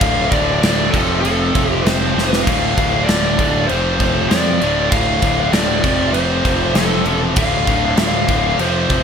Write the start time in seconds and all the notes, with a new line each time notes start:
Already playing: D2 A2 D3 D4 A4 F5
0.00 D1 D2 A2 D3 F5, kick, crash
0.31 D1 D2 A2 D3 D5, kick, crash
0.62 D1 D2 A2 D3 D5, snare, crash
0.90 F1 F2 C3 F3 A4, kick, crash
0.95 F3 C4 G4
1.22 F1 F2 C3 F3 A4, crash
1.54 F1 F2 C3 F3, kick, crash
1.72 G4
1.83 F1 F2 C3 F3 C5, crash
1.87 snare
2.15 F1 F2 C3 F3, snare
2.29 B4
2.33 snare
2.43 D1 D2 A2 D3 A4 F5
2.47 D4 F5, kick, crash
2.76 D1 D2 A2 D3, kick, crash
3.04 D2 D5
3.08 D1 A2 D3, snare, crash
3.38 D1 D2 A2 D3, kick, crash
3.67 F1 F2 C3 F3 C5, crash
3.71 C4 G4
3.99 F1 F2 C3 F3, kick, crash
4.29 F2 C3 F3 D5, snare, crash
4.61 D1 D2 A2 D3 D4 A4 F5, crash
4.91 D1 D2 A2 D3 F5, kick, crash
5.22 D1 D2 A2 D3, kick, crash
5.52 D1 D2 A2 D3 D5, snare, crash
5.82 F1 F2 C3 F3 C4 G4, kick, crash
6.13 F1 F2 C3 F3 C5, crash
6.44 F1 F2 C3 F3, kick, crash
6.74 F1 F2 C3 F3 A4, snare, crash
7.04 E1 F2 C3 F3, crash
7.36 D1 D2 A2 D3 D4 A4 F5, kick, crash
7.67 D1 D2 A2 D3, kick, crash
7.97 D1 D2 A2 D3 F5, snare, crash
8.28 D1 D2 A2 D3, kick, crash
8.59 F1 F2 C3 F3 C4 G4 C5, crash
8.89 F1 F2 C3 F3, kick, crash